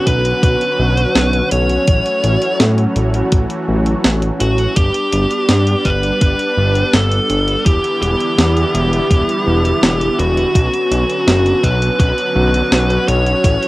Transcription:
0.00 1.85 D3 medium
0.00 4.73 F#3 medium
0.00 1.85 B3 medium
0.00 4.73 C#4 medium
0.00 1.85 F#4 medium
0.07 0.33 B1 medium
0.07 0.42 B4 medium
0.07 kick medium
0.07 closed hi-hat medium
0.25 closed hi-hat soft
0.43 0.56 B1 medium
0.43 1.48 B4 loud
0.43 kick loud
0.43 closed hi-hat medium
0.61 closed hi-hat soft
0.79 1.06 B1 medium
0.97 closed hi-hat soft
1.15 1.42 B1 medium
1.15 snare loud
1.15 closed hi-hat medium
1.33 closed hi-hat soft
1.51 1.78 B1 medium
1.51 2.56 C#5 loud
1.51 closed hi-hat medium
1.69 closed hi-hat soft
1.87 2.01 A1 medium
1.87 4.74 E3 medium
1.87 4.74 A3 medium
1.87 4.74 F#4 medium
1.87 kick loud
1.87 closed hi-hat medium
2.06 closed hi-hat soft
2.24 2.37 A1 medium
2.24 closed hi-hat medium
2.42 closed hi-hat soft
2.60 2.86 A2 medium
2.60 snare loud
2.60 closed hi-hat medium
2.78 closed hi-hat soft
2.96 3.22 A1 medium
2.96 closed hi-hat medium
3.14 closed hi-hat soft
3.32 3.45 A1 medium
3.32 kick loud
3.32 closed hi-hat medium
3.50 closed hi-hat soft
3.68 3.95 A1 medium
3.86 closed hi-hat soft
4.04 4.31 A1 medium
4.04 snare loud
4.04 closed hi-hat medium
4.22 closed hi-hat soft
4.40 4.67 A1 medium
4.40 4.76 F#4 medium
4.40 closed hi-hat medium
4.58 closed hi-hat soft
4.76 4.90 G1 medium
4.76 7.63 G3 medium
4.76 13.40 B3 medium
4.76 7.63 D4 medium
4.76 5.88 G4 medium
4.76 kick loud
4.76 closed hi-hat medium
4.94 closed hi-hat soft
5.13 5.26 G1 medium
5.13 closed hi-hat medium
5.31 closed hi-hat soft
5.49 5.75 G2 medium
5.49 snare loud
5.49 closed hi-hat medium
5.67 closed hi-hat soft
5.85 6.12 G1 medium
5.85 6.20 B4 medium
5.85 kick medium
5.85 closed hi-hat medium
6.03 closed hi-hat soft
6.21 6.35 G1 medium
6.21 6.96 B4 medium
6.21 kick loud
6.21 closed hi-hat medium
6.39 closed hi-hat soft
6.57 6.84 G1 medium
6.75 closed hi-hat soft
6.93 7.20 G1 loud
6.93 7.65 A4 medium
6.93 snare loud
6.93 closed hi-hat medium
7.12 closed hi-hat soft
7.30 7.56 G1 medium
7.30 closed hi-hat medium
7.48 closed hi-hat soft
7.66 7.79 E1 medium
7.66 10.52 D3 medium
7.66 10.52 E3 medium
7.66 10.52 G3 medium
7.66 10.52 E4 medium
7.66 7.99 G4 medium
7.66 kick loud
7.66 closed hi-hat medium
7.84 closed hi-hat soft
8.02 8.15 E1 medium
8.02 10.25 G4 loud
8.02 closed hi-hat medium
8.20 closed hi-hat soft
8.38 8.65 E2 medium
8.38 snare loud
8.38 closed hi-hat medium
8.57 closed hi-hat soft
8.74 9.01 E1 medium
8.74 closed hi-hat medium
8.93 closed hi-hat soft
9.11 9.24 E1 medium
9.11 kick loud
9.11 closed hi-hat medium
9.29 closed hi-hat soft
9.47 9.73 E1 medium
9.65 closed hi-hat soft
9.83 10.09 E1 medium
9.83 snare loud
9.83 closed hi-hat medium
10.01 closed hi-hat soft
10.19 10.45 E1 medium
10.19 11.68 F#4 medium
10.19 closed hi-hat medium
10.37 closed hi-hat soft
10.55 10.68 B1 medium
10.55 13.42 D3 medium
10.55 13.68 F#3 medium
10.55 13.68 C#4 medium
10.55 13.68 F#4 medium
10.55 kick loud
10.55 closed hi-hat medium
10.74 closed hi-hat soft
10.91 11.05 B1 medium
10.91 closed hi-hat medium
11.10 closed hi-hat soft
11.27 11.54 F#1 medium
11.27 snare loud
11.27 closed hi-hat medium
11.46 closed hi-hat soft
11.64 11.90 B1 medium
11.64 11.99 B4 medium
11.64 kick medium
11.64 closed hi-hat medium
11.82 closed hi-hat soft
12.00 12.13 B1 medium
12.00 13.08 B4 loud
12.00 kick loud
12.00 closed hi-hat medium
12.18 closed hi-hat soft
12.36 12.62 B1 medium
12.54 closed hi-hat soft
12.72 12.98 B1 medium
12.72 snare loud
12.72 closed hi-hat medium
12.90 closed hi-hat soft
13.08 13.35 B1 medium
13.08 13.68 C#5 loud
13.08 closed hi-hat medium
13.27 closed hi-hat soft
13.44 13.58 A1 medium
13.44 13.68 E3 medium
13.44 13.68 A3 medium
13.44 kick loud
13.44 closed hi-hat medium
13.63 closed hi-hat soft

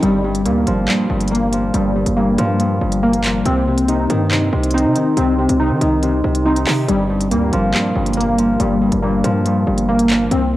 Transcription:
0.00 0.47 G1 loud
0.00 0.23 G2 medium
0.00 1.73 G3 loud
0.00 2.60 C4 loud
0.00 closed hi-hat medium
0.24 0.44 G2 medium
0.35 closed hi-hat medium
0.45 0.66 D2 loud
0.45 0.87 G2 medium
0.45 1.30 A#3 medium
0.45 closed hi-hat medium
0.67 0.88 G1 loud
0.67 1.52 F3 loud
0.67 closed hi-hat medium
0.88 1.09 G2 medium
0.88 clap loud
1.10 1.72 G1 loud
1.10 1.73 G2 medium
1.21 closed hi-hat medium
1.28 3.02 A#3 loud
1.28 2.15 A#3 medium
1.28 closed hi-hat medium
1.35 closed hi-hat medium
1.53 2.37 F3 medium
1.53 closed hi-hat medium
1.74 2.05 G1 loud
1.74 1.94 G2 medium
1.74 3.46 G3 medium
1.74 closed hi-hat medium
1.96 2.16 G2 medium
2.06 2.37 G1 loud
2.06 closed hi-hat medium
2.17 2.59 G2 medium
2.17 3.02 A#3 medium
2.38 2.80 G2 loud
2.38 3.23 F3 loud
2.38 closed hi-hat medium
2.60 2.80 G2 medium
2.60 closed hi-hat medium
2.81 3.43 G1 loud
2.81 3.51 G2 medium
2.92 closed hi-hat medium
3.03 6.24 A#3 medium
3.03 3.46 A#3 medium
3.13 closed hi-hat medium
3.24 3.51 F3 medium
3.24 clap loud
3.24 closed hi-hat medium
3.46 4.07 C2 loud
3.46 3.66 C3 medium
3.46 5.16 C4 medium
3.46 closed hi-hat medium
3.67 3.87 C3 medium
3.78 closed hi-hat medium
3.88 4.15 C3 medium
3.88 4.73 D#4 medium
3.88 closed hi-hat medium
4.10 4.51 G2 loud
4.10 4.36 D#3 loud
4.10 closed hi-hat medium
4.31 4.52 C3 medium
4.31 clap loud
4.53 4.86 C2 loud
4.53 5.01 C3 medium
4.63 closed hi-hat medium
4.71 6.45 C4 loud
4.71 5.58 D#4 medium
4.71 closed hi-hat medium
4.78 closed hi-hat medium
4.85 4.95 C3 loud
4.95 5.22 D#3 medium
4.95 closed hi-hat medium
5.17 5.48 C2 loud
5.17 5.37 C3 medium
5.17 6.89 C4 medium
5.17 closed hi-hat medium
5.38 5.59 C3 medium
5.49 5.72 C2 loud
5.49 closed hi-hat medium
5.60 5.86 C3 medium
5.60 6.44 D#4 medium
5.71 5.81 D#3 loud
5.81 6.22 C2 loud
5.81 6.08 D#3 medium
5.81 closed hi-hat medium
6.03 6.23 C3 medium
6.03 closed hi-hat medium
6.24 6.65 C2 loud
6.24 6.72 C3 medium
6.35 closed hi-hat medium
6.46 9.46 C4 loud
6.46 6.88 D#4 medium
6.56 closed hi-hat medium
6.67 6.88 C3 loud
6.67 6.93 D#3 medium
6.67 clap loud
6.67 open hi-hat medium
6.88 7.33 G1 loud
6.88 7.09 G2 medium
6.88 8.59 G3 medium
6.88 closed hi-hat medium
7.10 7.30 G2 medium
7.21 closed hi-hat medium
7.31 7.52 D2 loud
7.31 7.73 G2 medium
7.31 8.16 A#3 medium
7.31 closed hi-hat medium
7.53 7.73 G1 loud
7.53 8.37 F3 medium
7.53 closed hi-hat medium
7.74 7.94 G2 medium
7.74 clap loud
7.95 8.57 G1 loud
7.95 8.59 G2 medium
8.06 closed hi-hat medium
8.13 9.88 A#3 loud
8.13 9.01 A#3 medium
8.13 closed hi-hat medium
8.21 closed hi-hat medium
8.38 9.23 F3 medium
8.38 closed hi-hat medium
8.60 8.91 G1 loud
8.60 8.80 G2 medium
8.60 10.31 G3 medium
8.60 closed hi-hat medium
8.81 9.02 G2 medium
8.92 9.23 G1 loud
8.92 closed hi-hat medium
9.02 9.45 G2 medium
9.02 9.87 A#3 medium
9.24 9.65 G2 loud
9.24 10.09 F3 medium
9.24 closed hi-hat medium
9.46 9.66 G2 medium
9.46 closed hi-hat medium
9.67 10.29 G1 loud
9.67 10.36 G2 medium
9.78 closed hi-hat medium
9.89 10.57 A#3 loud
9.89 10.31 A#3 medium
9.99 closed hi-hat medium
10.10 10.36 F3 medium
10.10 clap loud
10.10 closed hi-hat medium
10.31 10.57 C2 loud
10.31 10.57 C4 medium
10.31 closed hi-hat medium

